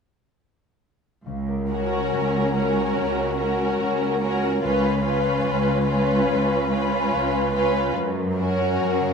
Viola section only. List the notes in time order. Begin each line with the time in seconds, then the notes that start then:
1.71 C#4
2.57 C#4
3.40 C#4
4.23 C#4
4.64 C#4
5.05 C#4
5.88 C#4
6.72 C#4
7.54 C#4
8.37 C#4